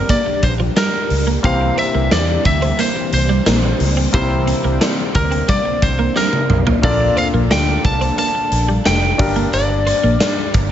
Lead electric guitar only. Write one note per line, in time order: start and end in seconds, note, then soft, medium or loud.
0.00 0.11 A#4 medium
0.10 0.44 D5 medium
0.44 0.53 C5 medium
0.78 1.24 A#4 medium
1.45 1.78 F5 medium
1.79 2.12 E5 medium
2.13 2.43 D5 medium
2.46 2.80 E5 medium
2.80 3.13 C5 loud
3.14 4.10 C5 loud
4.15 5.15 C5 medium
5.16 5.50 A#4 medium
5.49 5.84 D5 loud
5.83 6.17 C5 medium
6.17 6.64 A#4 medium
6.84 7.18 D5 medium
7.18 7.27 F5 loud
7.52 7.83 G5 loud
7.85 8.18 A5 loud
8.19 8.86 A5 loud
8.86 9.49 G5 loud
9.54 10.72 D5 medium